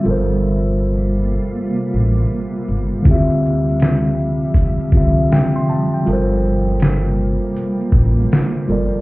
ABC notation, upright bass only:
X:1
M:4/4
L:1/16
Q:"Swing 16ths" 1/4=80
K:Gdor
V:1 name="Upright bass" clef=bass
G,,,6- G,,, z3 A,,,2 z2 G,,, z | D,,6- D,, z3 C,,2 z4 | G,,,6- G,,, z3 A,,,2 z2 G,,, z |]